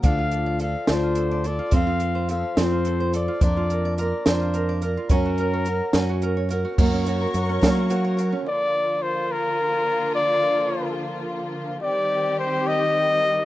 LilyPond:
<<
  \new Staff \with { instrumentName = "Trumpet" } { \time 6/8 \key bes \major \tempo 4. = 71 f''4 f''8 c''4 d''8 | f''4 f''8 c''4 d''8 | d''4 d''8 c''4 r8 | bes'2 r4 |
r2. | d''4 c''8 bes'4. | d''4. r4. | d''4 c''8 ees''4. | }
  \new Staff \with { instrumentName = "Nylon-string guitar" } { \time 6/8 \key bes \major d'16 f'16 a'16 d''16 a'8 d'16 f'16 a'16 d''16 a'16 f'16 | c'16 f'16 a'16 c''16 a'8 c'16 f'16 a'16 c''16 a'16 f'16 | d'16 f'16 bes'16 d''16 bes'8 d'16 f'16 bes'16 d''16 bes'16 f'16 | des'16 ges'16 bes'16 des''16 bes'8 des'16 ges'16 bes'16 des''16 bes'16 ges'16 |
bes16 des'16 ges'16 bes'8 des'16 bes16 des'16 ges'16 bes'8 des'16 | r2. | r2. | r2. | }
  \new Staff \with { instrumentName = "String section" } { \time 6/8 \key bes \major r2. | r2. | r2. | r2. |
<bes' des'' ges'' des'''>2. | <d f bes f'>2.~ | <d f bes f'>2. | <ees g c' g'>2. | }
  \new Staff \with { instrumentName = "Steel-string acoustic guitar" } { \time 6/8 \key bes \major <d f d' f' a'>4 <f d' f' a'>8 <d f d' f' a'>4 <d' f' a'>8 | <f c' f' a'>4 <f c' f' a'>8 <f c' f' a'>4 <c' f' a'>8 | <f bes d' bes'>4 <f bes d' bes'>8 <f bes d' bes'>4 <bes d' bes'>8 | <ges des' ges' bes'>4 <ges des' ges' bes'>8 <ges des' ges' bes'>4 <des' ges' bes'>8 |
<ges des' ges' bes'>8 <des' ges' bes'>8 <ges des' ges' bes'>8 <ges des' ges' bes'>8 <ges des' ges' bes'>8 <des' ges' bes'>8 | r2. | r2. | r2. | }
  \new Staff \with { instrumentName = "Fingered electric bass" } { \clef bass \time 6/8 \key bes \major d,4. d,4. | f,4. f,4. | f,4. f,4. | ges,4. ges,4. |
ges,4 ges,8 ges4. | r2. | r2. | r2. | }
  \new DrumStaff \with { instrumentName = "Drums" } \drummode { \time 6/8 <hh bd>8 hh8 hh8 <hh sn>8 hh8 hh8 | <hh bd>8 hh8 hh8 <hh sn>8 hh8 hh8 | <hh bd>8 hh8 hh8 <hh sn>8 hh8 hh8 | <hh bd>8 hh8 hh8 <hh sn>8 hh8 hh8 |
<cymc bd>8 hh8 hh8 <hh bd sn>8 hh8 hh8 | r4. r4. | r4. r4. | r4. r4. | }
>>